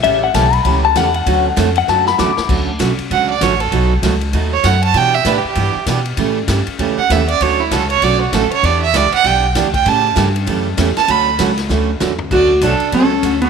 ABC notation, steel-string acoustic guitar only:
X:1
M:4/4
L:1/8
Q:"Swing" 1/4=196
K:D
V:1 name="Steel-string acoustic guitar"
[C,E,A,CG] z [C,E,A,CG] z [C,E,A,CG] z [C,E,A,CG] z | [D,F,A,CF] z [D,F,A,CF] z [D,F,A,CF] z [D,F,A,CF] z | [D,F,A,CF] z [D,F,A,CF] z [D,F,A,CF] z [D,F,A,CF] z | [B,,F,A,^DF] z [B,,F,A,DF] z [B,,F,A,DF] z [B,,F,A,DF] z |
[B,,E,B,DG] z [B,,E,B,DG] z [B,,E,B,DG] z [B,,E,B,DG] z | [C,E,A,CG] z [C,E,A,CG] z [C,E,A,CG] z [C,E,A,CG] z | [D,F,A,CF] z [D,F,A,CF] z [D,F,A,CF] z [D,F,A,CF] z | [E,B,DG] z [E,B,DG] z [E,B,DG] z [E,B,DG] z |
[C,E,A,CG] z [C,E,A,CG] z [C,E,A,CG] z [C,E,A,CG] z | [D,F,A,CF] z [D,F,A,CF] z [D,F,A,CF] z [D,F,A,CF] z | [D,F,A,CF] z [D,F,A,CF] z [D,F,A,CF] z [D,F,A,CF] z |]